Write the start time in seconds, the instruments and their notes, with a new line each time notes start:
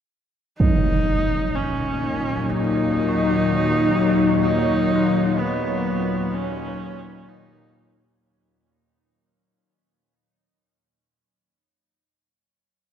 0.59 synth drone D#2 A#2, horsehead fiddle D#4, ambient pad D#4, singing bowl C#5, impact
1.55 ambient pad F#3, horsehead fiddle C#4
2.37 ambient pad C#5
2.51 horsehead fiddle D#4
3.09 tubular bells F#4
4.42 horsehead fiddle D#4
4.96 tubular bells F4
5.39 horsehead fiddle B3
6.34 horsehead fiddle C#4
7.29 horsehead fiddle D#4